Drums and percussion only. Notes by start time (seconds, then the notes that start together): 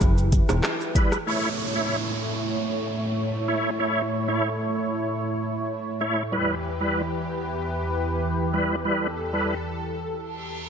0.01 kick, high timbale, shaker, maracas
0.18 maracas, shaker
0.32 kick, closed hi-hat, shaker, maracas
0.49 cross-stick, high timbale, shaker, maracas
0.64 cross-stick, clap, maracas, shaker
0.80 shaker, maracas
0.95 kick, closed hi-hat, shaker, maracas
1.12 cross-stick, shaker, maracas